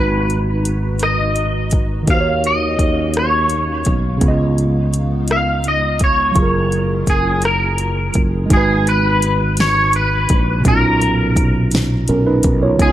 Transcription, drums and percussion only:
0, 0, Header, 1, 2, 480
1, 0, Start_track
1, 0, Tempo, 714286
1, 1394, Time_signature, 6, 3, 24, 8
1, 8684, End_track
2, 0, Start_track
2, 0, Title_t, "Drums"
2, 201, Note_on_c, 9, 42, 42
2, 268, Note_off_c, 9, 42, 0
2, 438, Note_on_c, 9, 42, 68
2, 506, Note_off_c, 9, 42, 0
2, 668, Note_on_c, 9, 42, 63
2, 691, Note_on_c, 9, 37, 90
2, 735, Note_off_c, 9, 42, 0
2, 758, Note_off_c, 9, 37, 0
2, 912, Note_on_c, 9, 42, 49
2, 979, Note_off_c, 9, 42, 0
2, 1150, Note_on_c, 9, 42, 70
2, 1161, Note_on_c, 9, 36, 84
2, 1218, Note_off_c, 9, 42, 0
2, 1228, Note_off_c, 9, 36, 0
2, 1394, Note_on_c, 9, 42, 65
2, 1396, Note_on_c, 9, 36, 106
2, 1461, Note_off_c, 9, 42, 0
2, 1463, Note_off_c, 9, 36, 0
2, 1639, Note_on_c, 9, 42, 41
2, 1706, Note_off_c, 9, 42, 0
2, 1874, Note_on_c, 9, 36, 89
2, 1877, Note_on_c, 9, 42, 72
2, 1942, Note_off_c, 9, 36, 0
2, 1944, Note_off_c, 9, 42, 0
2, 2108, Note_on_c, 9, 42, 64
2, 2130, Note_on_c, 9, 37, 93
2, 2175, Note_off_c, 9, 42, 0
2, 2197, Note_off_c, 9, 37, 0
2, 2349, Note_on_c, 9, 42, 52
2, 2416, Note_off_c, 9, 42, 0
2, 2587, Note_on_c, 9, 42, 71
2, 2598, Note_on_c, 9, 36, 86
2, 2654, Note_off_c, 9, 42, 0
2, 2665, Note_off_c, 9, 36, 0
2, 2831, Note_on_c, 9, 42, 65
2, 2832, Note_on_c, 9, 36, 107
2, 2898, Note_off_c, 9, 42, 0
2, 2900, Note_off_c, 9, 36, 0
2, 3079, Note_on_c, 9, 42, 41
2, 3146, Note_off_c, 9, 42, 0
2, 3317, Note_on_c, 9, 42, 67
2, 3384, Note_off_c, 9, 42, 0
2, 3546, Note_on_c, 9, 42, 63
2, 3568, Note_on_c, 9, 37, 90
2, 3613, Note_off_c, 9, 42, 0
2, 3635, Note_off_c, 9, 37, 0
2, 3790, Note_on_c, 9, 42, 53
2, 3857, Note_off_c, 9, 42, 0
2, 4028, Note_on_c, 9, 42, 72
2, 4038, Note_on_c, 9, 36, 86
2, 4095, Note_off_c, 9, 42, 0
2, 4105, Note_off_c, 9, 36, 0
2, 4271, Note_on_c, 9, 42, 62
2, 4273, Note_on_c, 9, 36, 110
2, 4338, Note_off_c, 9, 42, 0
2, 4340, Note_off_c, 9, 36, 0
2, 4517, Note_on_c, 9, 42, 41
2, 4584, Note_off_c, 9, 42, 0
2, 4753, Note_on_c, 9, 36, 89
2, 4753, Note_on_c, 9, 42, 74
2, 4820, Note_off_c, 9, 36, 0
2, 4820, Note_off_c, 9, 42, 0
2, 4985, Note_on_c, 9, 42, 68
2, 5007, Note_on_c, 9, 37, 96
2, 5052, Note_off_c, 9, 42, 0
2, 5074, Note_off_c, 9, 37, 0
2, 5229, Note_on_c, 9, 42, 53
2, 5297, Note_off_c, 9, 42, 0
2, 5469, Note_on_c, 9, 42, 74
2, 5479, Note_on_c, 9, 36, 85
2, 5536, Note_off_c, 9, 42, 0
2, 5546, Note_off_c, 9, 36, 0
2, 5714, Note_on_c, 9, 42, 76
2, 5715, Note_on_c, 9, 36, 118
2, 5781, Note_off_c, 9, 42, 0
2, 5782, Note_off_c, 9, 36, 0
2, 5961, Note_on_c, 9, 42, 47
2, 6028, Note_off_c, 9, 42, 0
2, 6198, Note_on_c, 9, 42, 82
2, 6265, Note_off_c, 9, 42, 0
2, 6430, Note_on_c, 9, 42, 70
2, 6453, Note_on_c, 9, 38, 104
2, 6498, Note_off_c, 9, 42, 0
2, 6520, Note_off_c, 9, 38, 0
2, 6674, Note_on_c, 9, 42, 57
2, 6741, Note_off_c, 9, 42, 0
2, 6914, Note_on_c, 9, 42, 80
2, 6922, Note_on_c, 9, 36, 97
2, 6981, Note_off_c, 9, 42, 0
2, 6989, Note_off_c, 9, 36, 0
2, 7157, Note_on_c, 9, 36, 124
2, 7157, Note_on_c, 9, 42, 75
2, 7224, Note_off_c, 9, 36, 0
2, 7224, Note_off_c, 9, 42, 0
2, 7402, Note_on_c, 9, 42, 45
2, 7469, Note_off_c, 9, 42, 0
2, 7637, Note_on_c, 9, 36, 93
2, 7639, Note_on_c, 9, 42, 81
2, 7704, Note_off_c, 9, 36, 0
2, 7706, Note_off_c, 9, 42, 0
2, 7872, Note_on_c, 9, 42, 76
2, 7895, Note_on_c, 9, 38, 108
2, 7939, Note_off_c, 9, 42, 0
2, 7962, Note_off_c, 9, 38, 0
2, 8115, Note_on_c, 9, 42, 57
2, 8183, Note_off_c, 9, 42, 0
2, 8353, Note_on_c, 9, 42, 82
2, 8362, Note_on_c, 9, 36, 102
2, 8420, Note_off_c, 9, 42, 0
2, 8430, Note_off_c, 9, 36, 0
2, 8598, Note_on_c, 9, 36, 124
2, 8598, Note_on_c, 9, 42, 77
2, 8665, Note_off_c, 9, 36, 0
2, 8666, Note_off_c, 9, 42, 0
2, 8684, End_track
0, 0, End_of_file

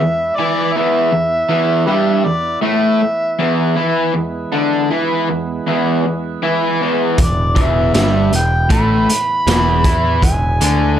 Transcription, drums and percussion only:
0, 0, Header, 1, 2, 480
1, 0, Start_track
1, 0, Tempo, 758534
1, 709, Time_signature, 4, 2, 24, 8
1, 6959, End_track
2, 0, Start_track
2, 0, Title_t, "Drums"
2, 4544, Note_on_c, 9, 42, 76
2, 4546, Note_on_c, 9, 36, 82
2, 4608, Note_off_c, 9, 42, 0
2, 4609, Note_off_c, 9, 36, 0
2, 4785, Note_on_c, 9, 36, 93
2, 4787, Note_on_c, 9, 42, 51
2, 4849, Note_off_c, 9, 36, 0
2, 4850, Note_off_c, 9, 42, 0
2, 5027, Note_on_c, 9, 42, 74
2, 5031, Note_on_c, 9, 38, 98
2, 5090, Note_off_c, 9, 42, 0
2, 5094, Note_off_c, 9, 38, 0
2, 5269, Note_on_c, 9, 42, 59
2, 5332, Note_off_c, 9, 42, 0
2, 5506, Note_on_c, 9, 42, 73
2, 5508, Note_on_c, 9, 36, 103
2, 5569, Note_off_c, 9, 42, 0
2, 5571, Note_off_c, 9, 36, 0
2, 5756, Note_on_c, 9, 42, 65
2, 5819, Note_off_c, 9, 42, 0
2, 5996, Note_on_c, 9, 42, 87
2, 6001, Note_on_c, 9, 38, 118
2, 6059, Note_off_c, 9, 42, 0
2, 6064, Note_off_c, 9, 38, 0
2, 6230, Note_on_c, 9, 36, 106
2, 6231, Note_on_c, 9, 42, 68
2, 6293, Note_off_c, 9, 36, 0
2, 6294, Note_off_c, 9, 42, 0
2, 6470, Note_on_c, 9, 36, 81
2, 6474, Note_on_c, 9, 42, 81
2, 6534, Note_off_c, 9, 36, 0
2, 6537, Note_off_c, 9, 42, 0
2, 6714, Note_on_c, 9, 42, 56
2, 6777, Note_off_c, 9, 42, 0
2, 6959, End_track
0, 0, End_of_file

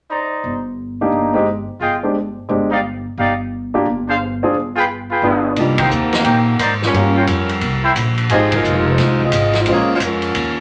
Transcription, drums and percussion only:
0, 0, Header, 1, 2, 480
1, 0, Start_track
1, 0, Key_signature, -3, "minor"
1, 0, Tempo, 341880
1, 131, Time_signature, 4, 2, 24, 8
1, 14884, End_track
2, 0, Start_track
2, 0, Title_t, "Drums"
2, 7811, Note_on_c, 9, 51, 49
2, 7814, Note_on_c, 9, 36, 20
2, 7951, Note_off_c, 9, 51, 0
2, 7954, Note_off_c, 9, 36, 0
2, 8115, Note_on_c, 9, 51, 74
2, 8127, Note_on_c, 9, 36, 77
2, 8255, Note_off_c, 9, 51, 0
2, 8267, Note_off_c, 9, 36, 0
2, 8293, Note_on_c, 9, 44, 45
2, 8434, Note_off_c, 9, 44, 0
2, 8600, Note_on_c, 9, 51, 43
2, 8607, Note_on_c, 9, 38, 52
2, 8741, Note_off_c, 9, 51, 0
2, 8748, Note_off_c, 9, 38, 0
2, 8768, Note_on_c, 9, 51, 52
2, 8776, Note_on_c, 9, 36, 23
2, 8908, Note_off_c, 9, 51, 0
2, 8916, Note_off_c, 9, 36, 0
2, 9256, Note_on_c, 9, 44, 51
2, 9256, Note_on_c, 9, 51, 59
2, 9260, Note_on_c, 9, 36, 18
2, 9396, Note_off_c, 9, 44, 0
2, 9396, Note_off_c, 9, 51, 0
2, 9400, Note_off_c, 9, 36, 0
2, 9579, Note_on_c, 9, 38, 36
2, 9719, Note_off_c, 9, 38, 0
2, 9743, Note_on_c, 9, 36, 18
2, 9749, Note_on_c, 9, 51, 52
2, 9883, Note_off_c, 9, 36, 0
2, 9889, Note_off_c, 9, 51, 0
2, 10212, Note_on_c, 9, 44, 46
2, 10212, Note_on_c, 9, 51, 61
2, 10218, Note_on_c, 9, 36, 19
2, 10352, Note_off_c, 9, 44, 0
2, 10352, Note_off_c, 9, 51, 0
2, 10359, Note_off_c, 9, 36, 0
2, 10521, Note_on_c, 9, 51, 44
2, 10661, Note_off_c, 9, 51, 0
2, 10688, Note_on_c, 9, 51, 49
2, 10695, Note_on_c, 9, 36, 22
2, 10828, Note_off_c, 9, 51, 0
2, 10836, Note_off_c, 9, 36, 0
2, 11171, Note_on_c, 9, 44, 59
2, 11171, Note_on_c, 9, 51, 57
2, 11174, Note_on_c, 9, 36, 19
2, 11312, Note_off_c, 9, 44, 0
2, 11312, Note_off_c, 9, 51, 0
2, 11314, Note_off_c, 9, 36, 0
2, 11478, Note_on_c, 9, 51, 41
2, 11619, Note_off_c, 9, 51, 0
2, 11646, Note_on_c, 9, 51, 55
2, 11655, Note_on_c, 9, 36, 22
2, 11787, Note_off_c, 9, 51, 0
2, 11796, Note_off_c, 9, 36, 0
2, 11959, Note_on_c, 9, 51, 71
2, 11967, Note_on_c, 9, 36, 76
2, 12099, Note_off_c, 9, 51, 0
2, 12108, Note_off_c, 9, 36, 0
2, 12135, Note_on_c, 9, 44, 47
2, 12275, Note_off_c, 9, 44, 0
2, 12608, Note_on_c, 9, 51, 52
2, 12610, Note_on_c, 9, 36, 21
2, 12615, Note_on_c, 9, 38, 32
2, 12748, Note_off_c, 9, 51, 0
2, 12750, Note_off_c, 9, 36, 0
2, 12755, Note_off_c, 9, 38, 0
2, 12919, Note_on_c, 9, 36, 50
2, 13060, Note_off_c, 9, 36, 0
2, 13082, Note_on_c, 9, 44, 58
2, 13082, Note_on_c, 9, 51, 68
2, 13088, Note_on_c, 9, 36, 24
2, 13222, Note_off_c, 9, 44, 0
2, 13222, Note_off_c, 9, 51, 0
2, 13229, Note_off_c, 9, 36, 0
2, 13386, Note_on_c, 9, 51, 41
2, 13393, Note_on_c, 9, 38, 36
2, 13526, Note_off_c, 9, 51, 0
2, 13533, Note_off_c, 9, 38, 0
2, 13559, Note_on_c, 9, 51, 61
2, 13566, Note_on_c, 9, 36, 26
2, 13699, Note_off_c, 9, 51, 0
2, 13706, Note_off_c, 9, 36, 0
2, 14042, Note_on_c, 9, 44, 59
2, 14042, Note_on_c, 9, 51, 60
2, 14046, Note_on_c, 9, 36, 23
2, 14182, Note_off_c, 9, 44, 0
2, 14182, Note_off_c, 9, 51, 0
2, 14186, Note_off_c, 9, 36, 0
2, 14348, Note_on_c, 9, 51, 44
2, 14488, Note_off_c, 9, 51, 0
2, 14526, Note_on_c, 9, 51, 54
2, 14528, Note_on_c, 9, 36, 25
2, 14666, Note_off_c, 9, 51, 0
2, 14668, Note_off_c, 9, 36, 0
2, 14884, End_track
0, 0, End_of_file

